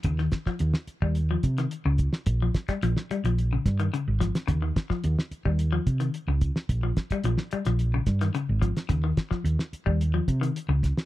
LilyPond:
<<
  \new Staff \with { instrumentName = "Clean electric guitar" } { \clef bass \time 4/4 \key ees \mixolydian \tempo 4 = 109 des16 ees8 f8 r8 g8 f8 ees8 des8 r16 | r16 f8 g16 f8 g16 f8 des8 ees16 des8 f8 | des16 ees8 f8 r8 g8 f8 ees8 des8 r16 | r16 f8 g16 f8 g16 f8 des8 ees16 des8 f8 |
des16 ees8 f8 r8 g8 f8 ees8 des8 r16 | }
  \new Staff \with { instrumentName = "Fingered electric bass" } { \clef bass \time 4/4 \key ees \mixolydian ees,8 r8 ees,16 r8 ees,8. c8 r16 des,8 r16 | bes,,8 r8 bes,,16 r8 bes,,8. g,8 r16 aes,,8 r16 | ees,8 r8 ees,16 r8 ees,8. c8 r16 des,8 r16 | bes,,8 r8 bes,,16 r8 bes,,8. g,8 r16 aes,,8 r16 |
ees,8 r8 ees,16 r8 ees,8. c8 r16 des,8 r16 | }
  \new DrumStaff \with { instrumentName = "Drums" } \drummode { \time 4/4 <hh bd>16 sn16 <hh bd sn>16 <bd sn>16 hh16 sn16 hh16 bd16 hh8 <hh bd>16 <hh sn>16 hh8 <hh bd>16 sn16 | <hh bd>8 <hh bd sn>16 <hh bd sn>16 hh16 sn16 hh16 hh16 hh8 <hh bd sn>16 hh16 hh8 <hh bd sn>16 <hh sn>16 | <hh bd>8 <hh bd sn>16 <bd sn>16 hh16 sn16 hh16 bd16 hh8 <hh bd>16 hh16 hh8 <hh bd>16 sn16 | <hh bd>8 <hh bd sn>16 <hh bd>16 hh16 sn16 hh16 <hh sn>16 hh8 <hh bd sn>16 <hh sn>16 hh8 <hh bd>16 <hh sn>16 |
<hh bd>8 <hh bd sn>16 <bd sn>16 hh16 sn16 hh16 bd16 hh8 <hh bd>16 hh16 hh8 <hh bd sn>16 sn16 | }
>>